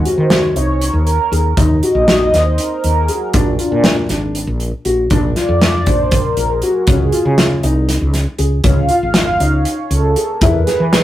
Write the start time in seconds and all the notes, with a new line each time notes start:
0.05 F#4 C5, closed hi-hat
0.18 D#3
0.30 F#4 C#5, snare, closed hi-hat
0.56 C2 D#4, closed hi-hat
0.81 A#4, closed hi-hat
0.93 D#2
1.07 closed hi-hat
1.32 D#2 G#4, closed hi-hat
1.57 D#2 D#4, kick, closed hi-hat
1.83 F#4 D#5, closed hi-hat
1.95 A#1
2.08 F#4, snare, closed hi-hat
2.33 D#2 D#4 C5, snare, closed hi-hat
2.58 A#4, closed hi-hat
2.84 D#2, closed hi-hat
2.99 G#4
3.08 F#4 G#4, closed hi-hat
3.34 A#1 D4, kick, closed hi-hat
3.59 F4, closed hi-hat
3.72 A#2
3.84 F4, snare, closed hi-hat
4.09 G#1 D4, snare, closed hi-hat
4.35 closed hi-hat
4.47 A#1
4.60 closed hi-hat
4.85 A#1 F#4, closed hi-hat
5.10 A#1 D4, kick, closed hi-hat
5.36 F4 D5, snare, closed hi-hat
5.49 F2
5.62 F4, snare, closed hi-hat
5.86 A#1 D4 C5, kick, closed hi-hat
6.10 A#4, kick, closed hi-hat
6.37 A#1, closed hi-hat
6.47 G#4
6.61 F#4, closed hi-hat
6.87 C#2 C#4 G#4, kick, closed hi-hat
7.12 F4, closed hi-hat
7.25 C#3
7.38 F4, snare, closed hi-hat
7.63 C2 D#4, closed hi-hat
7.89 snare, closed hi-hat
8.01 C#2
8.14 snare, closed hi-hat
8.38 C#2 G#4, closed hi-hat
8.64 C#2 C#4 F5, kick, closed hi-hat
8.89 F4, closed hi-hat
9.03 G#1
9.14 F4, snare, closed hi-hat
9.40 C#2 D#4 C#5, closed hi-hat
9.65 C#5, closed hi-hat
9.91 C#2 A4, closed hi-hat
10.16 G#4 A#4, closed hi-hat
10.41 E2 E4 B4, kick, closed hi-hat
10.67 G#4, snare, closed hi-hat
10.80 E3
10.93 G#4, snare, closed hi-hat